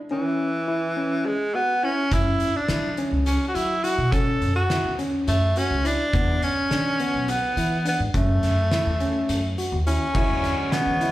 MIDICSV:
0, 0, Header, 1, 6, 480
1, 0, Start_track
1, 0, Key_signature, 3, "minor"
1, 0, Tempo, 573614
1, 83, Time_signature, 7, 3, 24, 8
1, 9302, End_track
2, 0, Start_track
2, 0, Title_t, "Tine electric piano"
2, 0, Program_c, 0, 4
2, 92, Note_on_c, 0, 61, 76
2, 408, Note_off_c, 0, 61, 0
2, 568, Note_on_c, 0, 64, 69
2, 726, Note_off_c, 0, 64, 0
2, 812, Note_on_c, 0, 61, 64
2, 1128, Note_off_c, 0, 61, 0
2, 1294, Note_on_c, 0, 66, 55
2, 1450, Note_off_c, 0, 66, 0
2, 1535, Note_on_c, 0, 64, 58
2, 1691, Note_off_c, 0, 64, 0
2, 1775, Note_on_c, 0, 61, 67
2, 2091, Note_off_c, 0, 61, 0
2, 2255, Note_on_c, 0, 64, 69
2, 2412, Note_off_c, 0, 64, 0
2, 2494, Note_on_c, 0, 61, 74
2, 2810, Note_off_c, 0, 61, 0
2, 2967, Note_on_c, 0, 66, 64
2, 3127, Note_off_c, 0, 66, 0
2, 3213, Note_on_c, 0, 64, 64
2, 3371, Note_off_c, 0, 64, 0
2, 3453, Note_on_c, 0, 61, 77
2, 3770, Note_off_c, 0, 61, 0
2, 3933, Note_on_c, 0, 64, 66
2, 4091, Note_off_c, 0, 64, 0
2, 4174, Note_on_c, 0, 61, 72
2, 4491, Note_off_c, 0, 61, 0
2, 4658, Note_on_c, 0, 66, 60
2, 4815, Note_off_c, 0, 66, 0
2, 4893, Note_on_c, 0, 64, 72
2, 5051, Note_off_c, 0, 64, 0
2, 5134, Note_on_c, 0, 59, 79
2, 5451, Note_off_c, 0, 59, 0
2, 5612, Note_on_c, 0, 62, 68
2, 5771, Note_off_c, 0, 62, 0
2, 5856, Note_on_c, 0, 59, 74
2, 6172, Note_off_c, 0, 59, 0
2, 6338, Note_on_c, 0, 64, 68
2, 6495, Note_off_c, 0, 64, 0
2, 6571, Note_on_c, 0, 62, 62
2, 6730, Note_off_c, 0, 62, 0
2, 6815, Note_on_c, 0, 61, 67
2, 7131, Note_off_c, 0, 61, 0
2, 7298, Note_on_c, 0, 64, 66
2, 7454, Note_off_c, 0, 64, 0
2, 7538, Note_on_c, 0, 61, 71
2, 7853, Note_off_c, 0, 61, 0
2, 8018, Note_on_c, 0, 66, 59
2, 8174, Note_off_c, 0, 66, 0
2, 8258, Note_on_c, 0, 64, 66
2, 8414, Note_off_c, 0, 64, 0
2, 8503, Note_on_c, 0, 64, 78
2, 8816, Note_off_c, 0, 64, 0
2, 8976, Note_on_c, 0, 61, 65
2, 9132, Note_off_c, 0, 61, 0
2, 9215, Note_on_c, 0, 64, 74
2, 9302, Note_off_c, 0, 64, 0
2, 9302, End_track
3, 0, Start_track
3, 0, Title_t, "Tenor saxophone"
3, 0, Program_c, 1, 66
3, 89, Note_on_c, 1, 52, 73
3, 1054, Note_on_c, 1, 56, 79
3, 1066, Note_off_c, 1, 52, 0
3, 1295, Note_on_c, 1, 59, 85
3, 1307, Note_off_c, 1, 56, 0
3, 1539, Note_on_c, 1, 61, 81
3, 1551, Note_off_c, 1, 59, 0
3, 1783, Note_on_c, 1, 64, 90
3, 1795, Note_off_c, 1, 61, 0
3, 2146, Note_on_c, 1, 62, 79
3, 2159, Note_off_c, 1, 64, 0
3, 2498, Note_off_c, 1, 62, 0
3, 2727, Note_on_c, 1, 61, 67
3, 2897, Note_off_c, 1, 61, 0
3, 2912, Note_on_c, 1, 66, 49
3, 2967, Note_on_c, 1, 64, 75
3, 2980, Note_off_c, 1, 66, 0
3, 3207, Note_on_c, 1, 66, 79
3, 3220, Note_off_c, 1, 64, 0
3, 3449, Note_on_c, 1, 69, 92
3, 3462, Note_off_c, 1, 66, 0
3, 3808, Note_off_c, 1, 69, 0
3, 3813, Note_on_c, 1, 66, 67
3, 4147, Note_off_c, 1, 66, 0
3, 4419, Note_on_c, 1, 57, 76
3, 4666, Note_on_c, 1, 61, 88
3, 4678, Note_off_c, 1, 57, 0
3, 4905, Note_on_c, 1, 62, 87
3, 4917, Note_off_c, 1, 61, 0
3, 5384, Note_on_c, 1, 61, 94
3, 5396, Note_off_c, 1, 62, 0
3, 6107, Note_on_c, 1, 59, 81
3, 6119, Note_off_c, 1, 61, 0
3, 6579, Note_off_c, 1, 59, 0
3, 6594, Note_on_c, 1, 59, 74
3, 6697, Note_off_c, 1, 59, 0
3, 6830, Note_on_c, 1, 57, 72
3, 7985, Note_off_c, 1, 57, 0
3, 8262, Note_on_c, 1, 61, 82
3, 8974, Note_on_c, 1, 59, 72
3, 8986, Note_off_c, 1, 61, 0
3, 9302, Note_off_c, 1, 59, 0
3, 9302, End_track
4, 0, Start_track
4, 0, Title_t, "Tonewheel organ"
4, 0, Program_c, 2, 16
4, 8476, Note_on_c, 2, 50, 53
4, 8487, Note_on_c, 2, 54, 52
4, 8497, Note_on_c, 2, 56, 52
4, 8507, Note_on_c, 2, 73, 56
4, 9302, Note_off_c, 2, 50, 0
4, 9302, Note_off_c, 2, 54, 0
4, 9302, Note_off_c, 2, 56, 0
4, 9302, Note_off_c, 2, 73, 0
4, 9302, End_track
5, 0, Start_track
5, 0, Title_t, "Upright bass"
5, 0, Program_c, 3, 32
5, 1772, Note_on_c, 3, 42, 79
5, 1974, Note_off_c, 3, 42, 0
5, 2251, Note_on_c, 3, 54, 70
5, 2453, Note_off_c, 3, 54, 0
5, 2606, Note_on_c, 3, 37, 70
5, 2810, Note_off_c, 3, 37, 0
5, 2967, Note_on_c, 3, 54, 67
5, 3273, Note_off_c, 3, 54, 0
5, 3331, Note_on_c, 3, 47, 76
5, 3635, Note_off_c, 3, 47, 0
5, 3693, Note_on_c, 3, 42, 81
5, 3895, Note_off_c, 3, 42, 0
5, 4052, Note_on_c, 3, 40, 69
5, 4255, Note_off_c, 3, 40, 0
5, 4414, Note_on_c, 3, 42, 75
5, 4616, Note_off_c, 3, 42, 0
5, 4774, Note_on_c, 3, 37, 79
5, 4976, Note_off_c, 3, 37, 0
5, 5136, Note_on_c, 3, 40, 94
5, 5337, Note_off_c, 3, 40, 0
5, 5612, Note_on_c, 3, 52, 74
5, 5815, Note_off_c, 3, 52, 0
5, 5974, Note_on_c, 3, 35, 73
5, 6176, Note_off_c, 3, 35, 0
5, 6333, Note_on_c, 3, 52, 70
5, 6637, Note_off_c, 3, 52, 0
5, 6693, Note_on_c, 3, 44, 71
5, 6794, Note_off_c, 3, 44, 0
5, 6816, Note_on_c, 3, 42, 98
5, 7017, Note_off_c, 3, 42, 0
5, 7055, Note_on_c, 3, 42, 67
5, 7256, Note_off_c, 3, 42, 0
5, 7416, Note_on_c, 3, 40, 58
5, 7616, Note_off_c, 3, 40, 0
5, 7773, Note_on_c, 3, 42, 71
5, 7974, Note_off_c, 3, 42, 0
5, 8134, Note_on_c, 3, 39, 82
5, 8335, Note_off_c, 3, 39, 0
5, 8490, Note_on_c, 3, 40, 96
5, 8591, Note_off_c, 3, 40, 0
5, 8614, Note_on_c, 3, 40, 73
5, 8814, Note_off_c, 3, 40, 0
5, 9091, Note_on_c, 3, 52, 63
5, 9302, Note_off_c, 3, 52, 0
5, 9302, End_track
6, 0, Start_track
6, 0, Title_t, "Drums"
6, 1770, Note_on_c, 9, 36, 84
6, 1772, Note_on_c, 9, 42, 76
6, 1854, Note_off_c, 9, 36, 0
6, 1856, Note_off_c, 9, 42, 0
6, 2007, Note_on_c, 9, 42, 54
6, 2090, Note_off_c, 9, 42, 0
6, 2247, Note_on_c, 9, 38, 92
6, 2247, Note_on_c, 9, 42, 68
6, 2330, Note_off_c, 9, 38, 0
6, 2330, Note_off_c, 9, 42, 0
6, 2488, Note_on_c, 9, 42, 56
6, 2572, Note_off_c, 9, 42, 0
6, 2729, Note_on_c, 9, 42, 75
6, 2812, Note_off_c, 9, 42, 0
6, 2972, Note_on_c, 9, 42, 51
6, 3056, Note_off_c, 9, 42, 0
6, 3213, Note_on_c, 9, 42, 53
6, 3296, Note_off_c, 9, 42, 0
6, 3451, Note_on_c, 9, 36, 88
6, 3451, Note_on_c, 9, 42, 60
6, 3534, Note_off_c, 9, 36, 0
6, 3534, Note_off_c, 9, 42, 0
6, 3695, Note_on_c, 9, 42, 47
6, 3779, Note_off_c, 9, 42, 0
6, 3933, Note_on_c, 9, 38, 84
6, 3933, Note_on_c, 9, 42, 63
6, 4017, Note_off_c, 9, 38, 0
6, 4017, Note_off_c, 9, 42, 0
6, 4175, Note_on_c, 9, 42, 55
6, 4259, Note_off_c, 9, 42, 0
6, 4415, Note_on_c, 9, 42, 72
6, 4498, Note_off_c, 9, 42, 0
6, 4652, Note_on_c, 9, 42, 48
6, 4736, Note_off_c, 9, 42, 0
6, 4895, Note_on_c, 9, 42, 55
6, 4978, Note_off_c, 9, 42, 0
6, 5133, Note_on_c, 9, 36, 97
6, 5135, Note_on_c, 9, 42, 73
6, 5217, Note_off_c, 9, 36, 0
6, 5219, Note_off_c, 9, 42, 0
6, 5376, Note_on_c, 9, 42, 57
6, 5459, Note_off_c, 9, 42, 0
6, 5616, Note_on_c, 9, 38, 88
6, 5616, Note_on_c, 9, 42, 69
6, 5699, Note_off_c, 9, 38, 0
6, 5699, Note_off_c, 9, 42, 0
6, 5854, Note_on_c, 9, 42, 58
6, 5938, Note_off_c, 9, 42, 0
6, 6094, Note_on_c, 9, 42, 76
6, 6177, Note_off_c, 9, 42, 0
6, 6336, Note_on_c, 9, 42, 56
6, 6419, Note_off_c, 9, 42, 0
6, 6573, Note_on_c, 9, 42, 59
6, 6657, Note_off_c, 9, 42, 0
6, 6813, Note_on_c, 9, 42, 63
6, 6814, Note_on_c, 9, 36, 88
6, 6896, Note_off_c, 9, 42, 0
6, 6897, Note_off_c, 9, 36, 0
6, 7053, Note_on_c, 9, 38, 28
6, 7053, Note_on_c, 9, 42, 53
6, 7137, Note_off_c, 9, 38, 0
6, 7137, Note_off_c, 9, 42, 0
6, 7293, Note_on_c, 9, 38, 96
6, 7293, Note_on_c, 9, 42, 67
6, 7376, Note_off_c, 9, 38, 0
6, 7376, Note_off_c, 9, 42, 0
6, 7534, Note_on_c, 9, 42, 50
6, 7618, Note_off_c, 9, 42, 0
6, 7774, Note_on_c, 9, 42, 73
6, 7857, Note_off_c, 9, 42, 0
6, 8018, Note_on_c, 9, 42, 48
6, 8101, Note_off_c, 9, 42, 0
6, 8257, Note_on_c, 9, 42, 58
6, 8341, Note_off_c, 9, 42, 0
6, 8492, Note_on_c, 9, 36, 95
6, 8494, Note_on_c, 9, 49, 86
6, 8576, Note_off_c, 9, 36, 0
6, 8578, Note_off_c, 9, 49, 0
6, 8734, Note_on_c, 9, 38, 30
6, 8734, Note_on_c, 9, 42, 54
6, 8817, Note_off_c, 9, 38, 0
6, 8817, Note_off_c, 9, 42, 0
6, 8972, Note_on_c, 9, 38, 97
6, 8972, Note_on_c, 9, 42, 65
6, 9056, Note_off_c, 9, 38, 0
6, 9056, Note_off_c, 9, 42, 0
6, 9213, Note_on_c, 9, 42, 58
6, 9297, Note_off_c, 9, 42, 0
6, 9302, End_track
0, 0, End_of_file